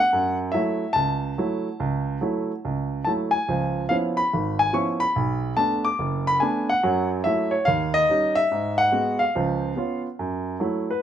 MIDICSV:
0, 0, Header, 1, 2, 480
1, 0, Start_track
1, 0, Key_signature, 3, "minor"
1, 0, Tempo, 419580
1, 126, Time_signature, 4, 2, 24, 8
1, 12607, End_track
2, 0, Start_track
2, 0, Title_t, "Grand piano"
2, 0, Program_c, 0, 0
2, 0, Note_on_c, 0, 78, 103
2, 145, Note_on_c, 0, 42, 66
2, 412, Note_off_c, 0, 78, 0
2, 554, Note_off_c, 0, 42, 0
2, 591, Note_on_c, 0, 76, 85
2, 619, Note_on_c, 0, 57, 45
2, 620, Note_on_c, 0, 54, 53
2, 621, Note_on_c, 0, 64, 61
2, 950, Note_off_c, 0, 54, 0
2, 950, Note_off_c, 0, 57, 0
2, 951, Note_off_c, 0, 64, 0
2, 1063, Note_on_c, 0, 81, 95
2, 1093, Note_on_c, 0, 37, 64
2, 1096, Note_off_c, 0, 76, 0
2, 1509, Note_off_c, 0, 37, 0
2, 1580, Note_on_c, 0, 54, 50
2, 1582, Note_on_c, 0, 57, 46
2, 1590, Note_on_c, 0, 64, 53
2, 1912, Note_off_c, 0, 54, 0
2, 1913, Note_off_c, 0, 57, 0
2, 1917, Note_off_c, 0, 64, 0
2, 2057, Note_on_c, 0, 37, 68
2, 2472, Note_off_c, 0, 37, 0
2, 2530, Note_on_c, 0, 54, 49
2, 2536, Note_on_c, 0, 57, 46
2, 2545, Note_on_c, 0, 64, 58
2, 2867, Note_off_c, 0, 54, 0
2, 2870, Note_off_c, 0, 57, 0
2, 2875, Note_off_c, 0, 64, 0
2, 3028, Note_on_c, 0, 37, 61
2, 3439, Note_off_c, 0, 37, 0
2, 3467, Note_off_c, 0, 81, 0
2, 3484, Note_on_c, 0, 81, 77
2, 3507, Note_on_c, 0, 54, 45
2, 3507, Note_on_c, 0, 57, 42
2, 3514, Note_on_c, 0, 64, 53
2, 3557, Note_off_c, 0, 81, 0
2, 3787, Note_on_c, 0, 80, 84
2, 3836, Note_off_c, 0, 54, 0
2, 3836, Note_off_c, 0, 57, 0
2, 3840, Note_off_c, 0, 64, 0
2, 3984, Note_on_c, 0, 37, 56
2, 3990, Note_on_c, 0, 53, 60
2, 4396, Note_off_c, 0, 80, 0
2, 4397, Note_off_c, 0, 37, 0
2, 4400, Note_off_c, 0, 53, 0
2, 4450, Note_on_c, 0, 77, 89
2, 4463, Note_on_c, 0, 53, 48
2, 4465, Note_on_c, 0, 59, 42
2, 4470, Note_on_c, 0, 61, 43
2, 4474, Note_on_c, 0, 64, 53
2, 4522, Note_off_c, 0, 77, 0
2, 4770, Note_on_c, 0, 83, 88
2, 4795, Note_off_c, 0, 53, 0
2, 4795, Note_off_c, 0, 59, 0
2, 4798, Note_off_c, 0, 61, 0
2, 4800, Note_off_c, 0, 64, 0
2, 4960, Note_on_c, 0, 32, 62
2, 5219, Note_off_c, 0, 83, 0
2, 5254, Note_on_c, 0, 80, 92
2, 5365, Note_off_c, 0, 32, 0
2, 5406, Note_on_c, 0, 53, 45
2, 5410, Note_on_c, 0, 61, 48
2, 5414, Note_on_c, 0, 59, 39
2, 5417, Note_on_c, 0, 64, 52
2, 5420, Note_off_c, 0, 80, 0
2, 5422, Note_on_c, 0, 85, 77
2, 5721, Note_on_c, 0, 83, 101
2, 5746, Note_off_c, 0, 53, 0
2, 5747, Note_off_c, 0, 85, 0
2, 5748, Note_off_c, 0, 61, 0
2, 5750, Note_off_c, 0, 59, 0
2, 5751, Note_off_c, 0, 64, 0
2, 5902, Note_on_c, 0, 35, 62
2, 6315, Note_off_c, 0, 35, 0
2, 6367, Note_on_c, 0, 81, 92
2, 6370, Note_on_c, 0, 57, 51
2, 6370, Note_on_c, 0, 59, 41
2, 6383, Note_on_c, 0, 62, 53
2, 6388, Note_off_c, 0, 83, 0
2, 6687, Note_on_c, 0, 86, 90
2, 6700, Note_off_c, 0, 81, 0
2, 6707, Note_off_c, 0, 57, 0
2, 6707, Note_off_c, 0, 59, 0
2, 6714, Note_off_c, 0, 62, 0
2, 6855, Note_on_c, 0, 30, 64
2, 7176, Note_on_c, 0, 83, 95
2, 7185, Note_off_c, 0, 86, 0
2, 7271, Note_off_c, 0, 30, 0
2, 7322, Note_on_c, 0, 80, 75
2, 7325, Note_off_c, 0, 83, 0
2, 7338, Note_on_c, 0, 57, 47
2, 7346, Note_on_c, 0, 59, 41
2, 7353, Note_on_c, 0, 62, 55
2, 7657, Note_off_c, 0, 80, 0
2, 7659, Note_on_c, 0, 78, 90
2, 7671, Note_off_c, 0, 57, 0
2, 7675, Note_off_c, 0, 59, 0
2, 7678, Note_off_c, 0, 62, 0
2, 7818, Note_on_c, 0, 54, 66
2, 7821, Note_on_c, 0, 42, 68
2, 8102, Note_off_c, 0, 78, 0
2, 8232, Note_off_c, 0, 54, 0
2, 8234, Note_off_c, 0, 42, 0
2, 8282, Note_on_c, 0, 76, 90
2, 8299, Note_on_c, 0, 54, 50
2, 8299, Note_on_c, 0, 57, 44
2, 8311, Note_on_c, 0, 64, 57
2, 8593, Note_on_c, 0, 73, 74
2, 8616, Note_off_c, 0, 76, 0
2, 8631, Note_off_c, 0, 54, 0
2, 8631, Note_off_c, 0, 57, 0
2, 8637, Note_off_c, 0, 64, 0
2, 8754, Note_on_c, 0, 77, 91
2, 8768, Note_off_c, 0, 73, 0
2, 8783, Note_on_c, 0, 39, 65
2, 9083, Note_on_c, 0, 75, 102
2, 9092, Note_off_c, 0, 77, 0
2, 9195, Note_off_c, 0, 39, 0
2, 9261, Note_on_c, 0, 55, 47
2, 9261, Note_on_c, 0, 61, 43
2, 9272, Note_on_c, 0, 63, 52
2, 9558, Note_on_c, 0, 76, 103
2, 9581, Note_off_c, 0, 75, 0
2, 9591, Note_off_c, 0, 55, 0
2, 9592, Note_off_c, 0, 61, 0
2, 9597, Note_off_c, 0, 63, 0
2, 9741, Note_on_c, 0, 44, 56
2, 10043, Note_on_c, 0, 78, 103
2, 10059, Note_off_c, 0, 76, 0
2, 10153, Note_off_c, 0, 44, 0
2, 10204, Note_on_c, 0, 56, 52
2, 10211, Note_on_c, 0, 59, 45
2, 10211, Note_on_c, 0, 66, 59
2, 10492, Note_off_c, 0, 78, 0
2, 10515, Note_on_c, 0, 77, 86
2, 10542, Note_off_c, 0, 56, 0
2, 10546, Note_off_c, 0, 59, 0
2, 10546, Note_off_c, 0, 66, 0
2, 10701, Note_on_c, 0, 53, 63
2, 10706, Note_on_c, 0, 37, 60
2, 11112, Note_off_c, 0, 53, 0
2, 11115, Note_off_c, 0, 37, 0
2, 11169, Note_on_c, 0, 59, 45
2, 11180, Note_on_c, 0, 61, 42
2, 11183, Note_on_c, 0, 65, 53
2, 11436, Note_off_c, 0, 77, 0
2, 11504, Note_off_c, 0, 59, 0
2, 11510, Note_off_c, 0, 61, 0
2, 11512, Note_off_c, 0, 65, 0
2, 11659, Note_on_c, 0, 42, 61
2, 12071, Note_off_c, 0, 42, 0
2, 12125, Note_on_c, 0, 54, 49
2, 12128, Note_on_c, 0, 57, 44
2, 12140, Note_on_c, 0, 64, 56
2, 12462, Note_off_c, 0, 54, 0
2, 12463, Note_off_c, 0, 57, 0
2, 12469, Note_off_c, 0, 64, 0
2, 12475, Note_on_c, 0, 71, 65
2, 12607, Note_off_c, 0, 71, 0
2, 12607, End_track
0, 0, End_of_file